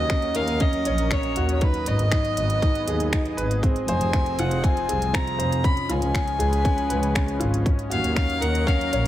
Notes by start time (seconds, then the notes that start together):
Already playing: D#2 F#3 C#4 F#4 A#4 D#5
0.10 C#4, finger snap, kick, closed hi-hat
0.22 closed hi-hat
0.35 D#2 A#4 F5, closed hi-hat
0.48 closed hi-hat
0.60 C#4 D#5, kick, closed hi-hat
0.73 closed hi-hat
0.85 A#1 C#5, closed hi-hat
0.98 closed hi-hat
1.11 C#4 C#5, finger snap, kick, closed hi-hat
1.23 closed hi-hat
1.36 D#2 F#4, closed hi-hat
1.49 closed hi-hat
1.54 C#5
1.61 D#4 B4, kick, closed hi-hat
1.74 closed hi-hat
1.86 G#1 B3 B4 D#5, closed hi-hat
1.99 G#1, closed hi-hat
2.12 D#4, finger snap, kick, closed hi-hat
2.25 G#4, closed hi-hat
2.37 G#1 D#5, closed hi-hat
2.50 closed hi-hat
2.62 D#4, kick, closed hi-hat
2.75 closed hi-hat
2.88 D#2 G#4, closed hi-hat
3.00 closed hi-hat
3.13 D#4, finger snap, kick, closed hi-hat
3.25 closed hi-hat
3.37 G#1 B4, closed hi-hat
3.51 closed hi-hat
3.63 F3 C4, kick, closed hi-hat
3.70 C4
3.76 closed hi-hat
3.88 F1 C5 G#5, closed hi-hat
4.00 F1, closed hi-hat
4.13 C4, finger snap, kick, closed hi-hat
4.26 closed hi-hat
4.37 F1 F4 F#5, closed hi-hat
4.51 closed hi-hat
4.63 C4 G#5, kick, closed hi-hat
4.77 closed hi-hat
4.88 C2 G#4, closed hi-hat
5.02 closed hi-hat
5.13 C4 A#5, finger snap, kick, closed hi-hat
5.27 closed hi-hat
5.38 F1 C5, closed hi-hat
5.52 closed hi-hat
5.64 C#4 B5, kick, closed hi-hat
5.71 C#4
5.77 closed hi-hat
5.89 C#2 F4 G#5, closed hi-hat
6.02 C#2, closed hi-hat
6.14 C#4, finger snap, kick, closed hi-hat
6.23 B4
6.27 closed hi-hat
6.39 C#2 G#4, closed hi-hat
6.53 closed hi-hat
6.65 C#4, kick, closed hi-hat
6.78 closed hi-hat
6.90 C#2 B4, closed hi-hat
7.03 closed hi-hat
7.15 C#4, finger snap, kick, closed hi-hat
7.28 closed hi-hat
7.40 G#1 F4, closed hi-hat
7.54 closed hi-hat
7.64 F#3 C#4, kick, closed hi-hat
7.79 closed hi-hat
7.90 D#2 F#4 F5, closed hi-hat
8.04 D#2 A#4, closed hi-hat
8.15 C#4 F5, finger snap, kick, closed hi-hat
8.30 closed hi-hat
8.41 D#2 A#4 F#5, closed hi-hat
8.55 closed hi-hat
8.67 C#4 F5, kick, closed hi-hat
8.81 closed hi-hat
8.93 A#1 C#5, closed hi-hat